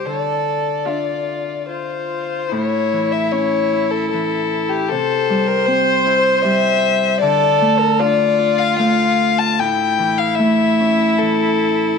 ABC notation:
X:1
M:3/4
L:1/16
Q:1/4=75
K:Dm
V:1 name="Fiddle"
d8 c4 | ^c3 e c3 A A3 G | A3 B c4 e4 | d3 B d3 f f3 a |
g3 f e4 A4 |]
V:2 name="Viola"
A4 F4 F4 | E12 | c12 | A4 F8 |
E12 |]
V:3 name="Harp"
D,4 [DFe]8 | A,,2 E,2 ^C2 E2 E,4 | C,2 G,2 C2 E2 G,4 | D,2 A,2 D2 F2 A,4 |
A,,2 E,2 A,2 ^C2 E,4 |]